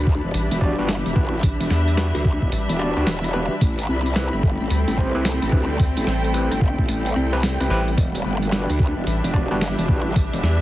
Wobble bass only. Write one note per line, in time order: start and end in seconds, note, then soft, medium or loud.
0.00 0.21 D2 loud
0.24 0.32 E1 loud
0.51 0.76 E1 loud
0.79 1.03 G1 loud
1.06 1.14 E1 loud
1.16 1.42 A1 loud
1.60 1.69 E1 medium
2.15 2.39 D2 loud
2.42 2.51 E1 medium
2.69 2.94 E1 loud
2.97 3.05 D2 loud
3.07 3.48 E1 loud
3.61 3.87 A1 loud
3.89 4.30 C2 loud
4.33 4.58 G1 loud
4.60 4.69 A1 loud
4.88 5.12 A1 loud
5.15 5.40 C2 medium
5.42 5.51 A1 loud
5.52 5.78 D2 loud
5.97 6.05 A1 loud
6.51 6.76 G1 loud
6.79 6.87 A1 medium
6.88 7.14 A1 loud
7.16 7.58 C2 loud
7.60 7.69 C2 medium
7.98 8.23 E1 loud
8.25 8.67 G1 loud
8.69 8.94 D2 loud
8.97 9.05 E1 medium
9.24 9.49 E1 loud
9.51 9.76 G1 loud
9.78 9.87 E1 loud
9.89 10.14 A1 loud
10.33 10.42 E1 loud